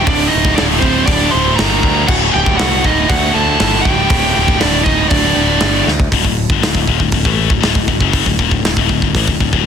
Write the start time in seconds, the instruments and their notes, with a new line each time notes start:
0.04 picked electric bass D1, distorted electric guitar D2 A2, lead electric guitar D4 D5, kick, open hi-hat
0.14 distorted electric guitar D2 A2
0.21 distorted electric guitar D2 A2
0.28 distorted electric guitar D2 A2, lead electric guitar D#4 D#5
0.35 picked electric bass D1, distorted electric guitar D2 A2
0.44 distorted electric guitar D2 A2, kick, snare
0.52 distorted electric guitar D2 A2, lead electric guitar D4 D5
0.58 picked electric bass D1, distorted electric guitar D2 A2, snare, open hi-hat
0.68 distorted electric guitar D2 A2
0.76 distorted electric guitar D2 A2, lead electric guitar C5
0.80 picked electric bass D1, distorted electric guitar D2, lead electric guitar C4, kick
0.85 distorted electric guitar A2
0.91 distorted electric guitar D2 A2
0.98 distorted electric guitar D2 A2
1.05 picked electric bass D1, distorted electric guitar D2 A2, lead electric guitar D4 D5, kick, open hi-hat
1.14 distorted electric guitar D2 A2
1.21 distorted electric guitar D2 A2
1.28 distorted electric guitar D2 A2, lead electric guitar C5 C6
1.35 picked electric bass D1, distorted electric guitar D2 A2
1.44 distorted electric guitar D2 A2
1.51 distorted electric guitar D2 A2
1.56 picked electric bass G1, distorted electric guitar D2, lead electric guitar A#4 A#5, snare, open hi-hat
1.60 distorted electric guitar A2
1.67 distorted electric guitar D2 A2
1.75 distorted electric guitar D2 A2, lead electric guitar A#5
1.83 distorted electric guitar D2 A2, picked electric bass D2, lead electric guitar A#4, kick
1.92 distorted electric guitar D2 A2
1.99 distorted electric guitar D2 A2
2.06 picked electric bass D1, distorted electric guitar D2 A2, lead electric guitar F#4 F#5, kick, crash
2.15 distorted electric guitar D2 A2
2.21 distorted electric guitar D2 A2
2.31 distorted electric guitar D2 A2, lead electric guitar G5
2.36 picked electric bass D1, distorted electric guitar D2 A2, lead electric guitar G4
2.45 distorted electric guitar D2 A2, kick
2.53 distorted electric guitar D2 A2
2.57 distorted electric guitar D2, lead electric guitar F#4 F#5, snare, open hi-hat
2.61 picked electric bass C2, distorted electric guitar A2
2.69 distorted electric guitar D2 A2
2.77 distorted electric guitar D2 A2
2.84 picked electric bass D1, distorted electric guitar D2 A2, lead electric guitar D#4 D#5, kick
2.92 distorted electric guitar D2 A2
2.99 distorted electric guitar D2 A2
3.08 distorted electric guitar D2 A2, picked electric bass D2, lead electric guitar F#4 F#5, kick, open hi-hat
3.16 distorted electric guitar D2 A2
3.23 distorted electric guitar D2 A2
3.30 distorted electric guitar D2 A2, lead electric guitar A4 A5
3.35 picked electric bass D2
3.39 distorted electric guitar D2 A2
3.46 distorted electric guitar D2 A2
3.55 distorted electric guitar D2 A2
3.60 picked electric bass G1, distorted electric guitar D2 A2, snare, open hi-hat
3.70 distorted electric guitar D2 A2
3.77 distorted electric guitar D2 A2
3.81 lead electric guitar G5, kick
3.85 picked electric bass D1, distorted electric guitar D2 A2, lead electric guitar G4
3.94 distorted electric guitar D2 A2
4.02 distorted electric guitar D2 A2
4.10 picked electric bass D1, distorted electric guitar D2 A2, kick, open hi-hat
4.17 distorted electric guitar D2 A2
4.25 distorted electric guitar D2 A2
4.33 picked electric bass D1, distorted electric guitar D2 A2, lead electric guitar G4 G5
4.41 distorted electric guitar D2 A2
4.48 distorted electric guitar D2 A2, kick, snare
4.56 distorted electric guitar D2 A2
4.60 picked electric bass D1, distorted electric guitar D2 A2, lead electric guitar D4 D5, snare, open hi-hat
4.71 distorted electric guitar D2 A2
4.80 distorted electric guitar D2 A2, lead electric guitar D#5
4.85 picked electric bass D1, distorted electric guitar D2 A2, lead electric guitar D#4, kick
4.95 distorted electric guitar D2 A2
5.03 distorted electric guitar D2 A2
5.08 picked electric bass D1, distorted electric guitar D2 A2, lead electric guitar D4 D5, kick, open hi-hat
5.18 distorted electric guitar D2 A2
5.25 distorted electric guitar D2 A2
5.33 picked electric bass D1, distorted electric guitar D2 A2
5.41 distorted electric guitar D2 A2
5.49 distorted electric guitar D2 A2
5.57 distorted electric guitar D2 A2, open hi-hat
5.61 picked electric bass G1, distorted electric guitar A2, snare
5.65 distorted electric guitar D2
5.73 distorted electric guitar D2 A2
5.80 distorted electric guitar D2 A2
5.87 picked electric bass D2, snare
6.00 kick
6.12 picked electric bass D1, distorted electric guitar D2 A2, kick, open hi-hat
6.24 picked electric bass D1, distorted electric guitar D2 A2, kick
6.50 picked electric bass G1, distorted electric guitar G2 D3, kick
6.63 picked electric bass D1, distorted electric guitar D2 A2, snare, open hi-hat
6.75 picked electric bass D1, distorted electric guitar D2 A2, kick
6.87 picked electric bass D#1, distorted electric guitar D#2 A#2, kick
7.00 picked electric bass D1, distorted electric guitar D2 A2, kick
7.12 picked electric bass D1, distorted electric guitar D2 A2, kick, open hi-hat
7.25 picked electric bass A1, distorted electric guitar A2 E3 A3, kick
7.50 picked electric bass D1, distorted electric guitar D2 A2, kick
7.60 picked electric bass D1, distorted electric guitar D2 A2, snare, open hi-hat
7.74 picked electric bass D1, distorted electric guitar D2 A2, kick
7.88 picked electric bass D1, distorted electric guitar D2 A2, kick
8.00 picked electric bass F#1, distorted electric guitar F#2 C#3 F#3, kick
8.13 kick, open hi-hat
8.26 picked electric bass D1, distorted electric guitar D2 A2, kick
8.39 picked electric bass D#1, distorted electric guitar D#2 A#2, kick
8.51 picked electric bass D1, distorted electric guitar D2 A2, kick
8.63 picked electric bass D1, distorted electric guitar D2 A2, snare, open hi-hat
8.77 picked electric bass D1, distorted electric guitar D2 A2, kick
8.89 picked electric bass D1, distorted electric guitar D2 A2, kick
9.02 picked electric bass D1, distorted electric guitar D2 A2, kick
9.15 picked electric bass A1, distorted electric guitar A2 E3, kick, open hi-hat
9.28 picked electric bass D1, distorted electric guitar D2 A2, kick
9.40 picked electric bass D1, distorted electric guitar D2 A2, kick
9.53 picked electric bass D1, distorted electric guitar D2 A2, kick